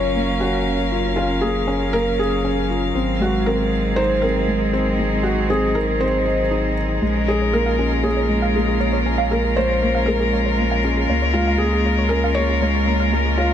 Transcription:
Already playing: sub bass F#1, string quartet F#3 C#4 A#4 F5, felt piano A#3 C#4 F4 C#5
0.15 felt piano A#3
0.40 felt piano C#4 F#4
0.92 felt piano F4
1.16 felt piano C#4 F4
1.41 felt piano A#3 G#4
1.68 felt piano C#4
1.93 felt piano A#3 A#4
2.19 felt piano G#4
2.45 felt piano C#4
2.70 felt piano F4
2.95 sub bass G#1, felt piano C4
3.02 string quartet C4
3.20 felt piano G#3 F#4
3.42 string quartet G#4
3.46 felt piano C4 A#4
3.56 string quartet D#4
3.96 felt piano D#4 C5
4.22 felt piano C4 A#4
4.48 felt piano G#3
4.73 felt piano C4
4.99 felt piano G#3
5.23 felt piano F#4
5.50 felt piano C4 G#4
5.75 felt piano D#4 A#4
6.00 felt piano C4 C5
6.26 felt piano D#5
6.51 felt piano D#4
7.02 sub bass A#1, felt piano G#3, string quartet G#3, synth arpeggio sound G#4
7.07 string quartet C#4
7.11 string quartet A#4
7.16 synth arpeggio sound G#4
7.28 felt piano G#4, synth arpeggio sound C#5
7.42 string quartet F4, synth arpeggio sound C#5
7.53 felt piano A#3 A#4
7.66 synth arpeggio sound F5
7.79 felt piano C#4, synth arpeggio sound G#4
7.91 synth arpeggio sound G#4
8.03 felt piano A#3 G#4, synth arpeggio sound C#5
8.16 synth arpeggio sound C#5
8.29 felt piano G#3
8.42 synth arpeggio sound F5
8.55 felt piano A#3, synth arpeggio sound G#4
8.68 synth arpeggio sound G#4
8.80 synth arpeggio sound C#5
8.93 synth arpeggio sound C#5
9.06 felt piano C#4
9.18 synth arpeggio sound F5
9.31 felt piano A#3 A#4, synth arpeggio sound G#4
9.44 synth arpeggio sound G#4
9.56 felt piano G#3 C5, synth arpeggio sound C#5
9.70 synth arpeggio sound C#5
9.83 felt piano A#3
9.95 synth arpeggio sound F5
10.06 felt piano G#3 A#4, synth arpeggio sound G#4
10.20 synth arpeggio sound G#4
10.33 synth arpeggio sound C#5
10.46 synth arpeggio sound C#5
10.59 felt piano A#3
10.71 synth arpeggio sound F5
10.84 felt piano C#4, synth arpeggio sound G#4
10.97 synth arpeggio sound G#4
11.09 sub bass C#2, felt piano A#3, synth arpeggio sound C#5
11.22 synth arpeggio sound C#5
11.34 felt piano G#3 F4
11.48 synth arpeggio sound F5
11.58 felt piano A#3 G#4, synth arpeggio sound G#4
11.73 synth arpeggio sound G#4
11.86 synth arpeggio sound C#5
11.99 synth arpeggio sound C#5
12.09 felt piano C#4 A#4
12.24 synth arpeggio sound F5
12.35 felt piano A#3 C#5, synth arpeggio sound G#4
12.49 synth arpeggio sound G#4
12.62 felt piano G#3, synth arpeggio sound C#5
12.75 synth arpeggio sound C#5
12.87 felt piano A#3
13.00 synth arpeggio sound F5
13.13 felt piano G#3, synth arpeggio sound G#4
13.25 synth arpeggio sound G#4
13.38 felt piano F4, synth arpeggio sound C#5

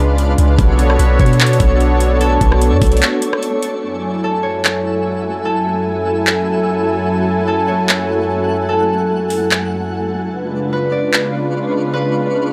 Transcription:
Already playing: 808-style bass C#2, analog synth pad C#3 G#3 D4 F4 B4, synth texture B3 F4 D5, harp B4
0.18 closed hi-hat
0.38 808-style bass C#2, closed hi-hat
0.58 808-style bass B1, synth texture A3 D4 C#5, analog synth pad B3 D4 F#4 A4 C#5, kick, closed hi-hat
0.79 closed hi-hat
0.90 cross-stick
0.99 808-style bass B1, harp B4, closed hi-hat
1.19 808-style bass B2, harp C#5, kick, closed hi-hat
1.26 closed hi-hat
1.33 closed hi-hat
1.40 clap, closed hi-hat
1.46 closed hi-hat
1.53 closed hi-hat
1.60 808-style bass B1, kick, closed hi-hat
1.80 closed hi-hat
2.00 closed hi-hat
2.21 harp A4, closed hi-hat
2.41 808-style bass B1, kick, closed hi-hat
2.52 cross-stick
2.62 closed hi-hat
2.71 808-style bass F#2
2.81 808-style bass B1, kick, closed hi-hat, open hi-hat
2.87 closed hi-hat
2.92 closed hi-hat
2.97 closed hi-hat
3.02 clap, closed hi-hat
3.22 closed hi-hat
3.33 cross-stick
3.43 closed hi-hat
3.63 closed hi-hat
3.83 analog synth pad F#2 F#3 E4 A4 G#5, synth texture A3 F#4 E5
4.24 harp A4
4.43 harp C#5
4.65 clap
5.45 harp A4
6.27 clap
7.07 synth texture F#5
7.48 harp A4
7.68 harp C#5
7.89 clap
8.69 harp A4
9.30 open hi-hat
9.51 clap
10.31 analog synth pad C#3 G#3 D4 F4 B4, synth texture B3 F4 C#5 D5
10.73 harp B4
10.92 harp D5
11.14 clap
11.93 harp B4

